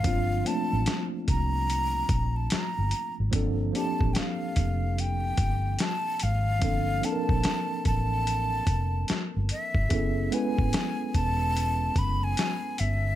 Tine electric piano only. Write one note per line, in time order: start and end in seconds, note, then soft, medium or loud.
0.03 0.40 F3 medium
0.03 0.41 A#3 soft
0.03 0.41 C4 medium
0.03 0.42 D4 medium
0.07 0.43 F4 medium
0.45 1.91 F3 medium
0.45 1.91 A#3 medium
0.45 1.92 C4 medium
0.45 1.92 D4 medium
0.49 1.93 A3 medium
3.31 3.69 F3 medium
3.31 3.69 A#3 medium
3.31 3.70 C4 medium
3.31 3.71 D4 medium
3.36 3.71 A4 medium
3.72 5.19 F3 medium
3.72 5.19 A#3 medium
3.72 5.20 C4 medium
3.72 5.21 D4 medium
3.77 5.21 G4 medium
6.59 6.97 F3 medium
6.59 6.98 A#3 medium
6.59 6.99 C4 medium
6.59 6.99 D4 medium
6.64 7.00 A4 medium
7.01 8.48 F3 medium
7.01 8.48 A#3 medium
7.01 8.49 C4 medium
7.01 8.49 D4 medium
7.06 7.12 A4 medium
7.12 8.53 A#4 medium
9.89 10.27 B3 medium
9.89 10.28 C#4 medium
9.89 10.28 E4 medium
9.89 10.27 G#4 medium
9.94 10.29 A4 medium
10.30 11.77 G#3 medium
10.30 11.77 B3 medium
10.30 11.78 C#4 medium
10.30 11.78 E4 medium
10.34 11.79 B4 medium